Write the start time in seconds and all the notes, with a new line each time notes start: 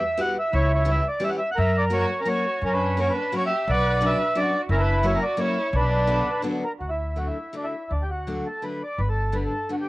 Already playing: E5
0.17 G3 B3 E4 F#4 G4 F#5
0.39 E5
0.52 C#2 E4 C#5
0.75 C#5
0.85 E3 G3 C#4 E4 G4
0.91 E5
1.08 D5
1.20 E3 G3 C#4 E4 G4
1.24 E5
1.30 F#5
1.39 E5
1.51 F#5
1.56 F#2 A#4 E5
1.78 D5
1.90 F#3 A#3 C#4 F#4 A#4 C#5
1.95 F#4
2.20 C#4 A#4
2.25 F#3 A#3 C#4 F#4 A#4 C#5
2.62 F#2 C#4 A#4
2.73 D4 B4
2.97 F#3 A#3 C#4 F#4 A#4 C#5
3.01 F#4
3.10 D4 B4
3.32 F#3 A#3 C#4 F#4 A#4
3.37 F#4 C#5
3.46 G4 E5
3.67 B1 B4 D5 F#5
4.01 F#3 B3 C#4 D4 F#4
4.05 B4 E5
4.35 F#3 B3 C#4 D4 F#4 D5
4.69 F#1 C#4 E4 A#4
4.80 D4 B4
5.03 F#3 A#3 C#4 E4 F#4 C#5
5.14 C#4 A#4
5.23 F#4 D5
5.37 F#3 A#3 C#4 E4 F#4 C#5
5.41 E4
5.73 B1 D4 B4
6.07 D3 F#3 B3 D4 F#4
6.42 D3 F#3 B3 D4 F#4
6.65 A#4
6.80 D2 F#4
6.89 E4
7.16 D3 F#3 A3 D4 F#4
7.27 E4
7.53 D3 F#3 A3 D4
7.64 E4
7.91 D2 D4
8.02 G4
8.10 F#4
8.27 D3 F#3 A3 D4
8.46 A4
8.62 D3 F#3 A3 D4 B4
8.83 D5
8.98 G1 B4
9.09 A4
9.32 D3 G3 B3 D4 B4
9.45 A4
9.69 D3 G3 B3 D4 F#4
9.81 G4